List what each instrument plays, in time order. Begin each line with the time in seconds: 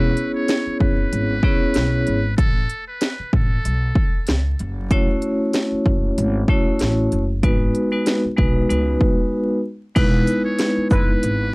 Already playing: upright bass E1, vibraphone B3 C#4 E4 G#4 C#5, muted trumpet B4
0.17 closed hi-hat
0.35 muted trumpet C#5
0.48 snare, closed hi-hat
0.66 muted upright bass stroke
0.80 upright bass F#1, muted trumpet B4, kick
1.13 upright bass G#1, closed hi-hat
1.43 vibraphone B3 C#4 E4 G#4 C#5, kick
1.74 upright bass B1, snare, closed hi-hat
2.07 upright bass G#1, closed hi-hat
2.37 upright bass A1, muted trumpet A4, kick, closed hi-hat
2.69 closed hi-hat
2.88 muted trumpet B4
3.01 snare, closed hi-hat
3.19 muted upright bass stroke
3.33 upright bass A1, muted trumpet A4, kick
3.65 upright bass B1, closed hi-hat
3.95 kick
4.27 upright bass C#2, snare, closed hi-hat
4.59 upright bass F#1, closed hi-hat
4.91 vibraphone A3 C#4 E4 F#4 C#5, kick, closed hi-hat
5.22 closed hi-hat
5.53 snare, closed hi-hat
5.72 muted upright bass stroke
5.86 upright bass F#1, kick
6.18 upright bass G#1, closed hi-hat
6.48 vibraphone A3 C#4 E4 F#4 C#5, kick
6.79 upright bass A1, snare, closed hi-hat
7.12 upright bass F#1, closed hi-hat
7.43 upright bass G#1, vibraphone G#3 B3 D#4 F#4 B4, kick, closed hi-hat
7.75 closed hi-hat
7.92 vibraphone G#3 B3 D#4 F#4 B4
8.06 snare, closed hi-hat
8.24 muted upright bass stroke
8.37 upright bass B1, vibraphone G#3 B3 D#4 F#4 B4, kick
8.69 upright bass C#2, vibraphone G#3 B3 D#4 F#4 B4, closed hi-hat
9.01 kick
9.95 upright bass E1, vibraphone G#3 B3 D#4 E4 B4, muted trumpet B4, kick, closed hi-hat, crash
10.27 closed hi-hat, shaker
10.45 muted trumpet C#5
10.59 snare, closed hi-hat
10.77 muted upright bass stroke
10.91 upright bass F#1, horn section G#3 E4 B4, muted trumpet B4, kick, shaker
11.23 upright bass G#1, closed hi-hat